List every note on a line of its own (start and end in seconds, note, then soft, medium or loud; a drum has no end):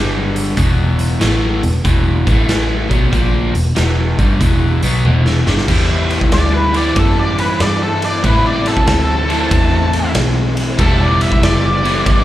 0.00 0.54 G1 medium
0.00 0.57 G2 medium
0.00 0.57 D3 medium
0.00 0.57 G3 loud
0.36 closed hi-hat medium
0.57 1.17 E1 loud
0.57 1.20 E2 medium
0.57 1.20 B2 loud
0.57 1.20 E3 loud
0.57 kick medium
0.57 closed hi-hat medium
0.99 closed hi-hat medium
1.20 1.60 A1 medium
1.20 1.61 A2 medium
1.20 1.62 E3 medium
1.20 1.62 A3 loud
1.20 snare loud
1.20 closed hi-hat medium
1.63 1.84 E1 medium
1.63 1.81 E2 medium
1.63 1.81 B2 medium
1.63 closed hi-hat medium
1.84 2.24 E1 medium
1.84 2.26 E2 medium
1.84 2.26 B2 loud
1.84 2.25 E3 loud
1.84 kick loud
1.84 closed hi-hat medium
2.26 2.87 A1 medium
2.26 2.89 A2 medium
2.26 2.90 E3 medium
2.26 2.90 A3 loud
2.26 kick loud
2.26 closed hi-hat medium
2.49 snare loud
2.49 closed hi-hat medium
2.89 3.11 B1 medium
2.89 3.11 B2 medium
2.89 3.11 F#3 medium
2.89 3.12 B3 medium
2.89 kick loud
2.89 closed hi-hat medium
3.12 3.52 A#1 medium
3.12 3.53 A#2 loud
3.12 3.53 F3 loud
3.12 3.54 A#3 loud
3.12 kick medium
3.12 closed hi-hat medium
3.54 3.75 E1 medium
3.54 3.72 E2 medium
3.54 3.72 B2 medium
3.54 closed hi-hat medium
3.75 4.16 E1 medium
3.75 4.17 E2 medium
3.75 4.17 B2 medium
3.75 4.18 E3 loud
3.75 snare loud
3.75 closed hi-hat medium
4.19 4.39 G1 medium
4.19 4.40 G2 medium
4.19 4.40 D3 medium
4.19 4.41 G3 medium
4.19 kick medium
4.19 closed hi-hat medium
4.40 4.80 E1 medium
4.40 4.82 E2 medium
4.40 4.82 B2 medium
4.40 4.82 E3 loud
4.40 kick loud
4.40 closed hi-hat medium
4.83 5.03 B1 medium
4.83 5.04 B2 medium
4.83 5.04 F#3 medium
4.83 5.05 B3 loud
4.83 closed hi-hat medium
5.05 5.44 E1 medium
5.05 5.46 E2 medium
5.05 5.46 B2 medium
5.05 5.46 E3 loud
5.05 high tom medium
5.26 snare medium
5.47 5.67 G1 medium
5.47 5.68 G2 medium
5.47 5.67 D3 loud
5.47 5.68 G3 medium
5.47 snare medium
5.57 snare medium
5.68 6.31 E2 medium
5.68 6.77 E3 medium
5.68 6.75 G3 loud
5.68 6.74 B3 loud
5.68 6.73 E4 loud
5.68 kick loud
5.68 crash loud
6.10 ride medium
6.21 kick medium
6.32 6.95 D2 medium
6.32 6.54 D5 medium
6.32 snare loud
6.32 ride medium
6.54 6.75 B4 medium
6.74 8.23 E3 medium
6.74 8.24 G3 medium
6.74 8.25 B3 medium
6.74 8.26 E4 medium
6.74 6.97 D5 medium
6.74 ride medium
6.96 7.58 F#2 medium
6.96 7.18 A4 medium
6.96 kick loud
6.96 ride medium
7.19 7.39 D5 medium
7.38 7.60 B4 medium
7.38 ride medium
7.60 8.22 G2 medium
7.60 7.82 D5 medium
7.60 snare loud
7.60 ride medium
7.83 8.03 A4 loud
8.02 8.24 D5 medium
8.02 ride medium
8.23 9.27 A2 medium
8.23 8.86 A2 medium
8.23 9.31 E3 medium
8.23 9.28 A3 loud
8.23 9.28 C4 loud
8.23 9.28 E4 loud
8.23 8.46 B4 medium
8.23 kick loud
8.23 ride medium
8.47 8.67 D5 medium
8.66 8.87 A4 medium
8.66 ride medium
8.77 kick medium
8.87 9.50 D2 medium
8.87 10.12 A4 medium
8.87 snare loud
8.87 ride medium
9.28 10.79 A2 medium
9.28 10.77 E3 medium
9.28 10.78 A3 medium
9.28 10.78 C4 medium
9.28 10.81 E4 medium
9.28 ride medium
9.51 10.13 E2 medium
9.51 kick loud
9.51 ride loud
9.93 ride medium
10.15 10.77 B1 medium
10.15 snare loud
10.15 ride medium
10.57 ride medium
10.78 11.41 E1 medium
10.78 11.87 E3 medium
10.78 11.85 G3 loud
10.78 11.84 B3 loud
10.78 11.83 E4 medium
10.78 11.00 A4 medium
10.78 kick loud
10.78 ride medium
11.01 11.21 D5 medium
11.21 11.42 E5 medium
11.21 ride medium
11.32 kick medium
11.42 12.04 F#1 medium
11.42 12.24 D5 medium
11.42 snare loud
11.42 ride medium
11.83 12.24 E3 medium
11.83 12.24 G3 medium
11.83 12.24 B3 medium
11.83 12.24 E4 medium
11.83 ride medium
12.06 12.24 G1 medium
12.06 kick loud
12.06 ride medium